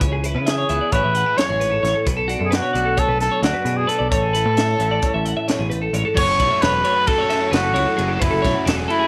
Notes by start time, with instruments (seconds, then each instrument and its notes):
Already playing: clean electric guitar E3
0.00 picked electric bass C#2, clean electric guitar C#3 C#5, kick, closed hi-hat
0.13 clean electric guitar G#4
0.24 clean electric guitar E4 B4, closed hi-hat
0.35 picked electric bass C#3, clean electric guitar B4
0.46 trumpet G#4, clean electric guitar E5, snare, closed hi-hat
0.58 clean electric guitar C#5
0.69 picked electric bass C#2, clean electric guitar E3 B3 E5, closed hi-hat
0.81 clean electric guitar D5
0.92 picked electric bass A1, clean electric guitar A2 E3 C#4 E4 G#4 C#5, trumpet B4, kick, closed hi-hat
1.04 picked electric bass A1, clean electric guitar E5
1.14 clean electric guitar C#4 F#5, closed hi-hat
1.26 clean electric guitar E4 E5
1.37 clean electric guitar F#2 C#5, trumpet C#5, snare, closed hi-hat
1.49 picked electric bass A1, clean electric guitar G#4
1.60 clean electric guitar G#2 B4, closed hi-hat
1.71 clean electric guitar A4
1.82 picked electric bass A1, clean electric guitar A2 C#5, snare, closed hi-hat
1.95 clean electric guitar A4
2.05 picked electric bass B1, clean electric guitar B2 B4, kick, closed hi-hat
2.17 clean electric guitar A4
2.28 clean electric guitar D4 F#4, closed hi-hat
2.39 picked electric bass F#2, clean electric guitar A4
2.45 trumpet G#4
2.51 trumpet F#4, clean electric guitar B4, snare, closed hi-hat
2.62 clean electric guitar C#5
2.73 picked electric bass B1, clean electric guitar F#3 A3 D5, closed hi-hat
2.85 clean electric guitar A4
2.97 trumpet A4, clean electric guitar C#5, kick, closed hi-hat
3.08 picked electric bass B1, clean electric guitar B4
3.19 clean electric guitar A4, trumpet A4, snare, closed hi-hat
3.31 clean electric guitar C#5
3.42 picked electric bass D2, clean electric guitar F#2 D4 D5, trumpet F#4, snare, closed hi-hat
3.54 clean electric guitar B4
3.65 picked electric bass B2, clean electric guitar D4 G#4, closed hi-hat
3.77 clean electric guitar F#4, trumpet G#4
3.87 clean electric guitar B2 B4, trumpet A4, closed hi-hat
3.99 picked electric bass B1, clean electric guitar D5
4.10 picked electric bass A1, clean electric guitar A2 C#5, trumpet A4, kick, closed hi-hat
4.22 clean electric guitar G#4
4.33 clean electric guitar E4 B4, closed hi-hat
4.46 picked electric bass A2, clean electric guitar B4
4.57 clean electric guitar E5, snare, closed hi-hat
4.68 clean electric guitar C#5
4.79 picked electric bass A1, clean electric guitar E3 C#4 E5, closed hi-hat
4.91 clean electric guitar D5
5.02 clean electric guitar C#5, kick, closed hi-hat
5.14 picked electric bass A1, clean electric guitar E5
5.25 clean electric guitar F#5, closed hi-hat
5.37 clean electric guitar E5
5.48 clean electric guitar B2 C#5, snare, closed hi-hat
5.59 picked electric bass A1, clean electric guitar G#4
5.70 clean electric guitar A2 B4, closed hi-hat
5.82 clean electric guitar A4
5.93 picked electric bass A1, clean electric guitar G#2 C#5, closed hi-hat
6.05 clean electric guitar A4
6.14 picked electric bass F#1, clean electric guitar F#2 C#5, overdriven electric guitar F#3 C#4 F#4 A4, trumpet C#5, kick, crash
6.27 picked electric bass F#1, clean electric guitar A4
6.40 picked electric bass B1, clean electric guitar A3 C#5, kick, ride
6.51 clean electric guitar E5
6.61 picked electric bass E1, overdriven electric guitar F#3 C#4 F#4 A4, clean electric guitar F#3 C#5, trumpet B4, snare, ride
6.73 clean electric guitar B4
6.83 clean electric guitar A3 C#5, overdriven electric guitar C#4 F#4 A4, ride
6.95 clean electric guitar B4
7.06 overdriven electric guitar F#3 C#4 F#4 A4, clean electric guitar F#3 A4, trumpet A4, kick, ride
7.18 clean electric guitar C#5
7.29 clean electric guitar C#4 E5, overdriven electric guitar C#4 F#4 A4, snare, ride
7.40 clean electric guitar E4 C#5
7.51 picked electric bass F#1, overdriven electric guitar F#3 C#4 F#4 A4, clean electric guitar A3 B4, trumpet F#4, snare, ride
7.63 clean electric guitar A4
7.74 picked electric bass C#2, clean electric guitar E4 C#5, ride
7.86 clean electric guitar A4
7.96 picked electric bass F#1, clean electric guitar F#2 G#4, overdriven electric guitar F#3 C#4 F#4 A4, ride
8.08 clean electric guitar A4
8.14 trumpet F#4
8.19 picked electric bass F#1, clean electric guitar F#2 B4, overdriven electric guitar F#3 C#4 F#4, trumpet E4, kick, ride
8.24 overdriven electric guitar A4
8.31 picked electric bass F#1, clean electric guitar A4
8.42 picked electric bass B1, clean electric guitar A3 C#5, kick, ride
8.46 snare
8.54 clean electric guitar F#4
8.65 picked electric bass E1, overdriven electric guitar F#3 C#4 F#4 A4, clean electric guitar F#3 A4, snare, ride
8.77 clean electric guitar G#4
8.88 clean electric guitar A3 A4, overdriven electric guitar C#4 F#4 A4, trumpet E4, ride
8.99 clean electric guitar G#4